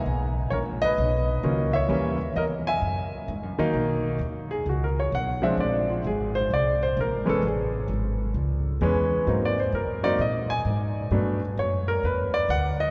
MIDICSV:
0, 0, Header, 1, 3, 480
1, 0, Start_track
1, 0, Tempo, 460829
1, 58, Time_signature, 4, 2, 24, 8
1, 13443, End_track
2, 0, Start_track
2, 0, Title_t, "Grand piano"
2, 0, Program_c, 0, 0
2, 525, Note_on_c, 0, 73, 79
2, 554, Note_on_c, 0, 70, 59
2, 597, Note_off_c, 0, 73, 0
2, 623, Note_off_c, 0, 70, 0
2, 851, Note_on_c, 0, 75, 105
2, 878, Note_on_c, 0, 71, 71
2, 1496, Note_on_c, 0, 51, 65
2, 1497, Note_on_c, 0, 54, 56
2, 1501, Note_on_c, 0, 61, 66
2, 1502, Note_on_c, 0, 58, 58
2, 1769, Note_off_c, 0, 75, 0
2, 1779, Note_off_c, 0, 51, 0
2, 1779, Note_off_c, 0, 54, 0
2, 1781, Note_off_c, 0, 58, 0
2, 1781, Note_off_c, 0, 61, 0
2, 1783, Note_off_c, 0, 71, 0
2, 1806, Note_on_c, 0, 76, 88
2, 1827, Note_on_c, 0, 73, 70
2, 1963, Note_on_c, 0, 52, 62
2, 1969, Note_on_c, 0, 55, 58
2, 1974, Note_on_c, 0, 58, 61
2, 1976, Note_on_c, 0, 61, 76
2, 2252, Note_off_c, 0, 52, 0
2, 2255, Note_off_c, 0, 55, 0
2, 2258, Note_off_c, 0, 58, 0
2, 2258, Note_off_c, 0, 61, 0
2, 2414, Note_off_c, 0, 76, 0
2, 2424, Note_off_c, 0, 73, 0
2, 2462, Note_on_c, 0, 75, 86
2, 2476, Note_on_c, 0, 70, 72
2, 2532, Note_off_c, 0, 75, 0
2, 2544, Note_off_c, 0, 70, 0
2, 2783, Note_on_c, 0, 80, 94
2, 2795, Note_on_c, 0, 76, 77
2, 3382, Note_off_c, 0, 80, 0
2, 3388, Note_off_c, 0, 76, 0
2, 3735, Note_on_c, 0, 51, 77
2, 3735, Note_on_c, 0, 54, 66
2, 3740, Note_on_c, 0, 58, 70
2, 3743, Note_on_c, 0, 63, 87
2, 4346, Note_off_c, 0, 51, 0
2, 4346, Note_off_c, 0, 54, 0
2, 4349, Note_off_c, 0, 58, 0
2, 4351, Note_off_c, 0, 63, 0
2, 4696, Note_on_c, 0, 68, 80
2, 4855, Note_off_c, 0, 68, 0
2, 4887, Note_on_c, 0, 66, 59
2, 5028, Note_off_c, 0, 66, 0
2, 5041, Note_on_c, 0, 70, 64
2, 5185, Note_off_c, 0, 70, 0
2, 5203, Note_on_c, 0, 73, 68
2, 5346, Note_off_c, 0, 73, 0
2, 5361, Note_on_c, 0, 78, 91
2, 5645, Note_on_c, 0, 53, 70
2, 5649, Note_on_c, 0, 56, 61
2, 5653, Note_off_c, 0, 78, 0
2, 5655, Note_on_c, 0, 60, 64
2, 5655, Note_on_c, 0, 62, 74
2, 5660, Note_on_c, 0, 76, 77
2, 5817, Note_off_c, 0, 76, 0
2, 5838, Note_on_c, 0, 74, 69
2, 6131, Note_off_c, 0, 74, 0
2, 6146, Note_on_c, 0, 65, 49
2, 6261, Note_off_c, 0, 53, 0
2, 6264, Note_off_c, 0, 56, 0
2, 6266, Note_off_c, 0, 60, 0
2, 6267, Note_off_c, 0, 62, 0
2, 6300, Note_off_c, 0, 65, 0
2, 6320, Note_on_c, 0, 68, 69
2, 6612, Note_off_c, 0, 68, 0
2, 6616, Note_on_c, 0, 72, 90
2, 6775, Note_off_c, 0, 72, 0
2, 6807, Note_on_c, 0, 74, 82
2, 7096, Note_off_c, 0, 74, 0
2, 7111, Note_on_c, 0, 72, 81
2, 7263, Note_off_c, 0, 72, 0
2, 7296, Note_on_c, 0, 70, 72
2, 7556, Note_on_c, 0, 52, 68
2, 7560, Note_on_c, 0, 56, 63
2, 7567, Note_on_c, 0, 59, 60
2, 7570, Note_on_c, 0, 61, 76
2, 7581, Note_off_c, 0, 70, 0
2, 7597, Note_on_c, 0, 69, 82
2, 7714, Note_off_c, 0, 52, 0
2, 7715, Note_off_c, 0, 56, 0
2, 7719, Note_off_c, 0, 59, 0
2, 7721, Note_off_c, 0, 61, 0
2, 7746, Note_off_c, 0, 69, 0
2, 7776, Note_on_c, 0, 68, 61
2, 8204, Note_off_c, 0, 68, 0
2, 9182, Note_on_c, 0, 52, 68
2, 9183, Note_on_c, 0, 56, 69
2, 9191, Note_on_c, 0, 59, 69
2, 9199, Note_on_c, 0, 61, 81
2, 9654, Note_on_c, 0, 54, 58
2, 9657, Note_on_c, 0, 58, 51
2, 9660, Note_off_c, 0, 52, 0
2, 9660, Note_off_c, 0, 56, 0
2, 9663, Note_on_c, 0, 60, 53
2, 9664, Note_off_c, 0, 59, 0
2, 9664, Note_on_c, 0, 63, 59
2, 9668, Note_off_c, 0, 61, 0
2, 9847, Note_on_c, 0, 74, 80
2, 9937, Note_off_c, 0, 54, 0
2, 9938, Note_off_c, 0, 58, 0
2, 9941, Note_off_c, 0, 60, 0
2, 9942, Note_off_c, 0, 63, 0
2, 9988, Note_off_c, 0, 74, 0
2, 9995, Note_on_c, 0, 72, 68
2, 10141, Note_off_c, 0, 72, 0
2, 10154, Note_on_c, 0, 70, 73
2, 10449, Note_off_c, 0, 70, 0
2, 10450, Note_on_c, 0, 54, 74
2, 10454, Note_on_c, 0, 58, 60
2, 10456, Note_on_c, 0, 60, 66
2, 10456, Note_on_c, 0, 74, 92
2, 10463, Note_on_c, 0, 63, 77
2, 10600, Note_off_c, 0, 54, 0
2, 10603, Note_off_c, 0, 58, 0
2, 10604, Note_off_c, 0, 60, 0
2, 10607, Note_off_c, 0, 63, 0
2, 10615, Note_off_c, 0, 74, 0
2, 10637, Note_on_c, 0, 75, 78
2, 10931, Note_off_c, 0, 75, 0
2, 10936, Note_on_c, 0, 80, 96
2, 11035, Note_off_c, 0, 80, 0
2, 11576, Note_on_c, 0, 54, 67
2, 11580, Note_on_c, 0, 57, 63
2, 11584, Note_on_c, 0, 59, 58
2, 11587, Note_on_c, 0, 62, 73
2, 11858, Note_off_c, 0, 54, 0
2, 11860, Note_off_c, 0, 57, 0
2, 11862, Note_off_c, 0, 59, 0
2, 11864, Note_off_c, 0, 62, 0
2, 12073, Note_on_c, 0, 73, 75
2, 12369, Note_off_c, 0, 73, 0
2, 12375, Note_on_c, 0, 70, 87
2, 12535, Note_off_c, 0, 70, 0
2, 12549, Note_on_c, 0, 71, 74
2, 12847, Note_off_c, 0, 71, 0
2, 12852, Note_on_c, 0, 74, 91
2, 13014, Note_off_c, 0, 74, 0
2, 13023, Note_on_c, 0, 78, 99
2, 13324, Note_off_c, 0, 78, 0
2, 13335, Note_on_c, 0, 75, 93
2, 13443, Note_off_c, 0, 75, 0
2, 13443, End_track
3, 0, Start_track
3, 0, Title_t, "Upright bass"
3, 0, Program_c, 1, 32
3, 59, Note_on_c, 1, 35, 82
3, 524, Note_off_c, 1, 35, 0
3, 539, Note_on_c, 1, 34, 90
3, 1004, Note_off_c, 1, 34, 0
3, 1024, Note_on_c, 1, 35, 84
3, 1487, Note_off_c, 1, 35, 0
3, 1492, Note_on_c, 1, 37, 91
3, 1961, Note_off_c, 1, 37, 0
3, 1969, Note_on_c, 1, 39, 80
3, 2439, Note_off_c, 1, 39, 0
3, 2454, Note_on_c, 1, 40, 87
3, 2921, Note_off_c, 1, 40, 0
3, 2930, Note_on_c, 1, 42, 78
3, 3399, Note_off_c, 1, 42, 0
3, 3416, Note_on_c, 1, 44, 85
3, 3571, Note_off_c, 1, 44, 0
3, 3571, Note_on_c, 1, 42, 51
3, 3725, Note_off_c, 1, 42, 0
3, 3732, Note_on_c, 1, 40, 58
3, 3883, Note_off_c, 1, 40, 0
3, 3889, Note_on_c, 1, 35, 80
3, 4359, Note_off_c, 1, 35, 0
3, 4365, Note_on_c, 1, 39, 77
3, 4837, Note_off_c, 1, 39, 0
3, 4851, Note_on_c, 1, 37, 78
3, 5320, Note_off_c, 1, 37, 0
3, 5335, Note_on_c, 1, 35, 84
3, 5798, Note_off_c, 1, 35, 0
3, 5805, Note_on_c, 1, 34, 77
3, 6276, Note_off_c, 1, 34, 0
3, 6295, Note_on_c, 1, 32, 84
3, 6762, Note_off_c, 1, 32, 0
3, 6774, Note_on_c, 1, 36, 76
3, 7241, Note_off_c, 1, 36, 0
3, 7258, Note_on_c, 1, 34, 86
3, 7415, Note_off_c, 1, 34, 0
3, 7415, Note_on_c, 1, 32, 55
3, 7574, Note_off_c, 1, 32, 0
3, 7580, Note_on_c, 1, 29, 64
3, 7727, Note_off_c, 1, 29, 0
3, 7738, Note_on_c, 1, 33, 82
3, 8200, Note_off_c, 1, 33, 0
3, 8206, Note_on_c, 1, 32, 85
3, 8677, Note_off_c, 1, 32, 0
3, 8690, Note_on_c, 1, 37, 80
3, 9159, Note_off_c, 1, 37, 0
3, 9175, Note_on_c, 1, 40, 87
3, 9641, Note_off_c, 1, 40, 0
3, 9657, Note_on_c, 1, 44, 82
3, 10122, Note_off_c, 1, 44, 0
3, 10128, Note_on_c, 1, 42, 84
3, 10598, Note_off_c, 1, 42, 0
3, 10609, Note_on_c, 1, 46, 77
3, 11078, Note_off_c, 1, 46, 0
3, 11090, Note_on_c, 1, 44, 83
3, 11559, Note_off_c, 1, 44, 0
3, 11568, Note_on_c, 1, 43, 80
3, 12039, Note_off_c, 1, 43, 0
3, 12056, Note_on_c, 1, 42, 82
3, 12523, Note_off_c, 1, 42, 0
3, 12531, Note_on_c, 1, 40, 75
3, 12997, Note_off_c, 1, 40, 0
3, 13003, Note_on_c, 1, 38, 84
3, 13443, Note_off_c, 1, 38, 0
3, 13443, End_track
0, 0, End_of_file